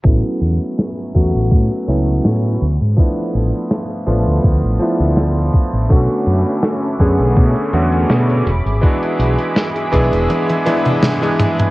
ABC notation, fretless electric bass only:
X:1
M:4/4
L:1/16
Q:"Swing 16ths" 1/4=82
K:A
V:1 name="Fretless electric bass" clef=bass
A,,, z E,, z3 E,, A,,, A,, z C,,2 A,,2 D,, G,, | z2 A,,, z3 A,,, D,, D,, A,,, z D,,3 z A,,, | B,,, z F,, z3 F,, B,,, B,, z E,,2 B,,2 E,,, G,,, | z2 B,,, z3 B,,, E,,, z8 |]